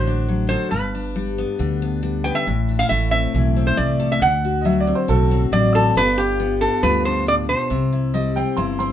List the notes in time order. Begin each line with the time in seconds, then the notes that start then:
Already playing: A1 A2 D3 F#3 F#4 C5
0.07 D4
0.29 F#3
0.49 A4 C5
0.71 G1 G2 B4
0.95 D4
1.16 G3
1.38 B3
1.59 D2 D3 D4
1.82 B3
2.03 G3
2.24 B4 G5
2.35 E5
2.47 A1 A2
2.69 D4
2.79 E4 F5
2.89 A1 A3 E5
3.11 C4 E5
3.34 B1 E3 E4
3.56 C4
3.67 C5
3.77 C2 A3 D5
4.00 A4
4.12 E5
4.21 D2 D3 F#5
4.45 F#4
4.61 F#3 D#5
4.66 E5
4.80 D5
4.87 C4
4.95 C5
5.08 B1 A2 F#4 A4
5.31 C4
5.52 A1 F#3 D5
5.75 F#4 A4
5.96 G1 G2 B3 D4 F4 G4 B4
6.18 F4 G4
6.40 B3
6.61 D4 A4
6.83 D2 G2 F4 B4
7.05 D4 C5
7.27 A2 D5
7.49 B2 C5
7.70 C2 C3
7.93 E4
8.14 G3 D#5
8.36 C4 G5
8.57 G1 G2 E4 C6
8.79 C4 C6